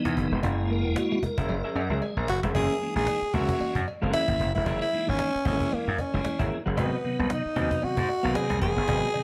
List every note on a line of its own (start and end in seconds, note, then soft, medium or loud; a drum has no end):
0.00 0.39 E3 medium
0.00 0.40 B3 medium
0.00 0.40 D#4 medium
0.05 0.15 E2 medium
0.05 muted clean electric guitar stroke soft
0.05 cajon bass loud
0.17 0.29 F#1 loud
0.17 cajon bass medium
0.17 cajon slap soft
0.32 0.44 E1 medium
0.32 0.42 G#3 medium
0.32 cajon slap soft
0.43 0.84 F#1 loud
0.43 1.19 G#3 medium
0.43 1.19 A#3 medium
0.43 0.56 C#4 medium
0.43 1.19 E4 medium
0.43 cajon bass loud
0.43 cowbell medium
0.58 muted clean electric guitar stroke medium
0.58 cajon slap soft
0.70 0.83 A#3 medium
0.70 0.95 A#4 loud
0.70 cajon slap soft
0.84 0.94 E1 loud
0.84 cajon slap soft
0.96 1.24 F#4 medium
0.96 muted clean electric guitar stroke soft
0.96 cajon slap loud
0.96 cowbell medium
1.11 1.22 G#3 medium
1.11 cajon slap soft
1.23 1.35 G#3 loud
1.23 1.98 A#4 loud
1.23 muted slap bass stroke soft
1.23 cajon bass medium
1.38 1.47 F#1 medium
1.38 1.54 C#4 medium
1.38 1.54 G#4 medium
1.38 1.54 A#4 loud
1.38 1.53 E5 medium
1.38 cajon bass loud
1.49 1.61 F#1 loud
1.49 1.62 F#3 medium
1.49 cajon slap soft
1.49 cowbell medium
1.64 1.80 C#4 medium
1.64 1.80 G#4 medium
1.64 1.80 A#4 medium
1.64 1.80 E5 medium
1.64 cajon slap soft
1.75 1.88 F#2 medium
1.75 muted clean electric guitar stroke soft
1.75 cajon slap soft
1.75 cowbell medium
1.90 2.00 C#2 medium
1.90 2.01 F#3 medium
1.90 2.03 C#4 soft
1.90 2.02 G#4 medium
1.90 2.03 A#4 medium
1.90 2.02 E5 medium
1.90 cajon slap soft
2.02 2.15 G#3 medium
2.02 2.16 G#4 medium
2.02 cajon slap medium
2.02 cowbell medium
2.17 2.26 A#1 loud
2.17 2.30 A#4 loud
2.17 muted clean electric guitar stroke soft
2.28 2.41 F#1 loud
2.28 2.41 F#4 loud
2.28 cajon slap loud
2.43 2.53 E1 medium
2.43 2.53 G#3 medium
2.43 2.54 C#4 medium
2.43 2.54 G#4 medium
2.43 2.54 A#4 medium
2.43 2.54 E5 medium
2.43 cajon slap loud
2.55 2.67 F#1 loud
2.55 2.75 E3 medium
2.55 2.68 F#3 medium
2.55 2.75 G#3 medium
2.55 2.75 A#3 medium
2.55 2.73 C#4 medium
2.55 2.75 C#4 medium
2.55 2.73 G#4 medium
2.55 2.93 G#4 loud
2.55 2.73 A#4 medium
2.55 2.73 E5 medium
2.55 cajon bass loud
2.55 cowbell medium
2.81 3.20 E3 medium
2.81 3.20 G#3 medium
2.81 3.20 A#3 medium
2.81 2.89 C#4 medium
2.81 muted clean electric guitar stroke soft
2.81 cajon slap soft
2.89 3.23 D#4 medium
2.96 3.05 A#1 loud
2.96 3.06 G#3 medium
2.96 3.35 G#4 loud
3.07 cajon slap loud
3.07 cowbell medium
3.22 muted slap bass stroke soft
3.34 3.46 C#2 medium
3.34 3.81 E3 medium
3.34 3.82 G#3 medium
3.34 3.47 A#3 medium
3.34 3.82 A#3 medium
3.34 3.52 C#4 medium
3.34 3.82 C#4 medium
3.34 3.87 F#4 loud
3.34 3.52 G#4 medium
3.34 3.52 A#4 medium
3.34 3.53 E5 loud
3.34 cajon bass medium
3.49 cajon bass loud
3.60 3.73 A#3 medium
3.60 muted slap bass stroke soft
3.60 cowbell medium
3.75 3.85 F#2 medium
3.75 cajon bass medium
3.88 muted clean electric guitar stroke medium
3.88 cajon slap soft
3.88 cowbell medium
4.01 4.12 F#1 medium
4.01 4.47 E3 medium
4.01 4.12 G#3 medium
4.01 4.47 G#3 medium
4.01 4.48 A#3 medium
4.01 4.08 C4 medium
4.01 4.21 C#4 medium
4.01 4.21 G#4 medium
4.01 4.21 A#4 medium
4.01 4.21 F#5 medium
4.10 4.51 C#4 medium
4.10 4.52 E4 loud
4.10 cowbell medium
4.14 cajon slap loud
4.28 4.38 G#1 medium
4.28 4.38 A#3 medium
4.28 cajon bass loud
4.40 4.52 F#1 medium
4.40 cajon bass medium
4.40 cajon slap soft
4.55 4.66 E1 medium
4.55 4.65 G#3 medium
4.55 4.79 E4 medium
4.66 4.79 F#1 loud
4.66 4.86 E3 medium
4.66 4.79 F#3 medium
4.66 4.86 G#3 medium
4.66 4.86 A#3 medium
4.66 4.84 C#4 medium
4.66 4.86 C#4 medium
4.66 4.84 G#4 medium
4.66 4.85 A#4 loud
4.66 4.85 E5 loud
4.66 cajon bass loud
4.66 cowbell medium
4.81 5.10 E4 loud
4.81 cajon slap soft
4.93 5.32 E3 medium
4.93 5.32 G#3 medium
4.93 5.32 A#3 medium
4.93 5.32 D#4 loud
4.93 muted clean electric guitar stroke soft
4.93 cajon slap soft
5.07 5.18 G#1 loud
5.07 5.17 G#3 medium
5.07 5.46 C#4 loud
5.18 cajon slap loud
5.18 cowbell medium
5.35 muted slap bass stroke medium
5.45 5.58 G#1 medium
5.45 5.93 E3 medium
5.45 5.93 G#3 medium
5.45 5.58 A#3 medium
5.45 5.93 A#3 medium
5.45 5.66 C#4 loud
5.45 5.76 C#4 loud
5.45 5.93 E4 medium
5.45 5.66 G#4 loud
5.45 5.67 A#4 loud
5.45 5.67 E5 loud
5.45 cajon bass medium
5.60 cajon bass loud
5.71 5.85 A#3 medium
5.71 6.03 A#3 medium
5.71 muted slap bass stroke soft
5.71 cowbell medium
5.88 5.97 F#2 loud
5.98 6.52 C#4 medium
5.98 muted clean electric guitar stroke medium
5.98 cajon bass medium
5.98 cajon slap soft
5.98 cowbell medium
6.13 6.23 F#1 medium
6.13 6.58 E3 medium
6.13 6.59 G#3 medium
6.13 6.23 G#3 medium
6.13 6.59 A#3 medium
6.13 6.19 D#4 medium
6.21 6.62 E4 medium
6.21 cowbell medium
6.25 6.37 G#3 medium
6.25 muted slap bass stroke medium
6.25 cajon slap loud
6.39 6.49 G#1 medium
6.39 6.55 C#4 medium
6.39 6.55 G#4 medium
6.39 6.55 A#4 medium
6.39 6.55 E5 medium
6.39 muted clean electric guitar stroke soft
6.39 cajon bass loud
6.51 cajon slap soft
6.66 6.78 F#1 medium
6.66 6.76 F#3 medium
6.66 6.76 C#4 soft
6.66 6.76 G#4 medium
6.66 6.77 A#4 medium
6.66 6.77 F#5 medium
6.76 6.90 G#1 loud
6.76 6.97 C3 medium
6.76 6.97 D#3 medium
6.76 6.97 F#3 medium
6.76 6.90 G#3 medium
6.76 7.33 B3 medium
6.76 6.98 B3 medium
6.76 6.95 C4 medium
6.76 6.95 F#4 medium
6.76 6.95 B4 loud
6.76 6.95 D#5 loud
6.76 cajon bass loud
6.76 cowbell medium
6.92 cajon slap soft
7.04 7.42 C3 medium
7.04 7.43 D#3 medium
7.04 7.43 F#3 medium
7.04 7.43 B3 loud
7.04 muted clean electric guitar stroke soft
7.04 cajon slap soft
7.19 7.29 C2 loud
7.19 7.29 B3 medium
7.30 7.85 D#4 medium
7.30 cajon slap loud
7.30 cowbell medium
7.46 muted slap bass stroke soft
7.56 7.69 D#2 medium
7.56 8.04 C3 medium
7.56 8.04 D#3 medium
7.56 8.04 F#3 medium
7.56 8.05 B3 medium
7.56 7.74 C4 medium
7.56 7.69 C4 medium
7.56 7.75 F#4 medium
7.56 7.75 B4 medium
7.56 7.75 D#5 loud
7.56 cajon bass medium
7.71 cajon bass loud
7.82 7.96 C4 medium
7.82 8.36 F#4 loud
7.82 muted slap bass stroke medium
7.82 cowbell medium
7.97 8.07 G#2 loud
7.97 cajon bass loud
8.09 muted clean electric guitar stroke soft
8.09 cowbell medium
8.23 8.34 B1 medium
8.23 8.70 C3 medium
8.23 8.70 D#3 medium
8.23 8.70 F#3 medium
8.23 8.70 A#3 medium
8.23 8.33 B3 medium
8.23 8.44 C4 medium
8.23 8.44 F#4 medium
8.23 8.43 B4 medium
8.23 8.43 F#5 loud
8.35 8.61 G#4 loud
8.35 cajon slap loud
8.35 cowbell medium
8.50 8.60 C2 medium
8.50 8.60 C4 medium
8.50 cajon bass loud
8.61 8.74 E1 medium
8.61 9.23 G#4 loud
8.61 muted clean electric guitar stroke soft
8.61 cajon bass loud
8.61 cajon slap soft
8.77 8.86 F#1 medium
8.77 8.87 B3 medium
8.88 9.00 G#1 loud
8.88 9.08 C3 medium
8.88 9.08 D#3 medium
8.88 9.08 F#3 medium
8.88 9.01 G#3 medium
8.88 9.08 B3 loud
8.88 9.07 C4 medium
8.88 9.07 F#4 medium
8.88 9.07 B4 medium
8.88 9.07 D#5 medium
8.88 cajon bass loud
8.88 cowbell medium
9.02 cajon slap soft
9.14 9.23 C3 loud
9.14 9.23 D#3 medium
9.14 9.23 F#3 medium
9.14 9.23 C4 medium
9.14 muted clean electric guitar stroke soft
9.14 cajon slap soft
9.14 cowbell medium